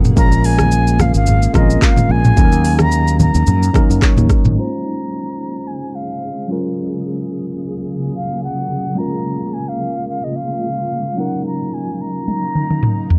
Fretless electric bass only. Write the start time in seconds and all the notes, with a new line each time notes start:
Already playing: F1
0.17 A#1
1.14 G#1
1.54 A#1
2.09 A#1
2.37 D#2
3.35 D#2
3.47 F#2
3.90 F#2
4.17 D#2
4.45 G#1